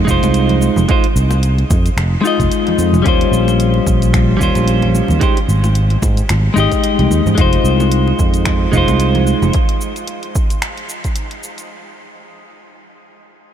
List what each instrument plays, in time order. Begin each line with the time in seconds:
0.05 fretless electric bass F1, clean electric guitar G#3 D#4, kick, cabasa
0.09 clean electric guitar F4 C5
0.23 fretless electric bass C2, closed hi-hat, muted conga, high conga, cabasa
0.34 closed hi-hat, cabasa
0.49 closed hi-hat, low conga
0.61 high conga, cabasa
0.76 fretless electric bass F1, low conga, cabasa
0.88 clean electric guitar G#3 D#4 F4 C5, kick, closed hi-hat, cabasa
1.04 closed hi-hat
1.16 fretless electric bass C2, cabasa
1.31 muted conga, cabasa
1.43 closed hi-hat, cabasa
1.58 closed hi-hat, muted conga
1.70 fretless electric bass F2, kick, muted conga, cabasa
1.86 closed hi-hat, cabasa
1.97 fretless electric bass F1, finger snap, closed hi-hat, muted conga, cabasa
2.21 clean electric guitar G#3 D#4 F4, cabasa
2.27 clean electric guitar D#5
2.40 fretless electric bass F1, kick, closed hi-hat, cabasa
2.52 closed hi-hat, cabasa
2.67 closed hi-hat, low conga
2.78 fretless electric bass F2, high conga, cabasa
2.93 fretless electric bass F1, low conga, cabasa
3.02 fretless electric bass D#2, clean electric guitar G3 C#4, kick, closed hi-hat, cabasa
3.06 clean electric guitar F4 C5
3.21 closed hi-hat
3.32 fretless electric bass A#1, cabasa
3.48 muted conga, cabasa
3.60 closed hi-hat, cabasa
3.74 muted conga
3.87 fretless electric bass A#1, kick, cabasa
4.02 closed hi-hat, cabasa
4.14 finger snap, kick, closed hi-hat, cabasa
4.37 fretless electric bass D#2, clean electric guitar G3 C#4 F4, kick
4.41 clean electric guitar C5, cabasa
4.55 fretless electric bass A#1, closed hi-hat, muted conga, high conga, cabasa
4.68 closed hi-hat, cabasa
4.82 closed hi-hat, low conga
4.95 high conga, cabasa
5.08 fretless electric bass D#2, low conga, cabasa
5.20 clean electric guitar G#3 D#4 G4 C5, kick, closed hi-hat, cabasa
5.37 closed hi-hat
5.49 fretless electric bass G#1, cabasa
5.64 muted conga, cabasa
5.75 closed hi-hat, cabasa
5.90 closed hi-hat, muted conga
6.02 fretless electric bass G#2, kick, muted conga, cabasa
6.17 closed hi-hat, cabasa
6.29 fretless electric bass G#1, finger snap, closed hi-hat, muted conga, cabasa
6.54 fretless electric bass G#1, clean electric guitar G#3 D#4, cabasa
6.58 clean electric guitar G4 D#5
6.72 kick, closed hi-hat, cabasa
6.84 closed hi-hat, cabasa
6.99 fretless electric bass C2, closed hi-hat, low conga
7.10 fretless electric bass D#2, high conga, cabasa
7.26 fretless electric bass G#2, low conga, cabasa
7.35 fretless electric bass F1, clean electric guitar G#3 D#4, kick, closed hi-hat, cabasa
7.39 clean electric guitar F4 C5
7.53 closed hi-hat
7.64 fretless electric bass C2, cabasa
7.80 muted conga, cabasa
7.92 closed hi-hat, cabasa
8.08 muted conga
8.19 fretless electric bass F2, kick, cabasa
8.34 closed hi-hat, cabasa
8.45 finger snap, kick, closed hi-hat, cabasa
8.72 fretless electric bass F1, clean electric guitar G#3 D#4 F4, kick, cabasa
8.77 clean electric guitar C5
8.88 fretless electric bass C2, closed hi-hat, muted conga, high conga, cabasa
9.00 closed hi-hat, cabasa
9.15 closed hi-hat, low conga
9.27 high conga, cabasa
9.42 fretless electric bass F1, low conga, cabasa
9.53 kick, closed hi-hat, cabasa
9.69 closed hi-hat
9.81 cabasa
9.96 closed hi-hat, cabasa
10.08 closed hi-hat, cabasa
10.23 closed hi-hat
10.35 kick, cabasa
10.50 closed hi-hat, cabasa
10.62 finger snap, closed hi-hat, cabasa
10.77 closed hi-hat
10.89 cabasa
11.04 kick, closed hi-hat, cabasa
11.16 closed hi-hat, cabasa
11.31 closed hi-hat
11.43 cabasa
11.58 closed hi-hat, cabasa